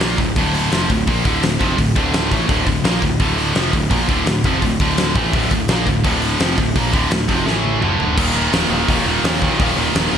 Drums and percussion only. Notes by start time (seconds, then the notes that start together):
0.01 snare, open hi-hat
0.18 kick, snare, open hi-hat
0.36 kick, open hi-hat
0.54 open hi-hat
0.72 snare, open hi-hat
0.90 kick, open hi-hat
1.08 kick, open hi-hat
1.25 kick, open hi-hat
1.43 snare, open hi-hat
1.61 kick, open hi-hat
1.78 kick, open hi-hat
1.96 kick, open hi-hat
2.14 snare, open hi-hat
2.32 kick, open hi-hat
2.49 kick, open hi-hat
2.66 kick, open hi-hat
2.85 snare, open hi-hat
3.02 kick, open hi-hat
3.20 kick, open hi-hat
3.38 open hi-hat
3.55 snare, open hi-hat
3.73 kick, open hi-hat
3.91 kick, open hi-hat
4.09 kick, open hi-hat
4.27 snare, open hi-hat
4.44 kick, open hi-hat
4.62 kick, open hi-hat
4.80 kick, open hi-hat
4.98 snare, open hi-hat
5.16 kick, open hi-hat
5.33 kick, open hi-hat
5.51 kick, open hi-hat
5.68 snare, open hi-hat
5.87 kick, snare, open hi-hat
6.04 kick, open hi-hat
6.22 open hi-hat
6.40 snare, open hi-hat
6.58 kick, open hi-hat
6.76 kick, open hi-hat
6.93 kick, open hi-hat
7.11 snare, open hi-hat
7.29 kick, open hi-hat
7.47 snare
7.64 high tom
7.82 mid tom
8.00 floor tom
8.18 kick, crash
8.53 snare, open hi-hat
8.88 kick, open hi-hat
9.24 snare, open hi-hat
9.42 kick
9.60 kick, open hi-hat
9.95 snare, open hi-hat